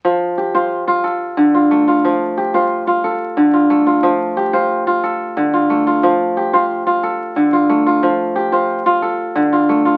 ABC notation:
X:1
M:12/8
L:1/8
Q:3/8=120
K:F
V:1 name="Kora"
z2 G c3 A3 F2 F- | F z G c3 A3 F2 F- | F z G c3 A3 F2 F- | F z G c3 A3 F2 F- |
F z G c3 A3 F2 F |]
V:2 name="Kora"
F,2 z F2 F z2 D,2 A,2 | F,2 z F2 F z2 D,2 A,2 | F,2 z F2 F z2 D,2 A,2 | F,2 z F2 F z2 D,2 A,2 |
F,2 z F2 F z2 D,2 A,2 |]